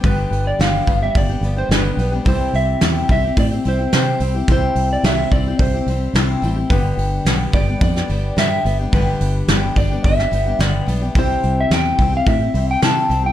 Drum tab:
HH |o-o-o-o-o-o-o-o-|o-o-o-o-o-o-o-o-|o-o-o-o-o-o-o-o-|o-o-o-o-o-o-o-o-|
SD |----o-------o---|----o-------o---|----o-------o---|----o----o--o---|
BD |o-----o-o-------|o-----o-o-------|o-----o-o-------|o-----o-o-------|

HH |o-o-o-o-o-o-o-o-|o-o-o-o-o-o-o-o-|
SD |----o----o--o---|----o-------o---|
BD |o-----o-o-------|o-----o-o-------|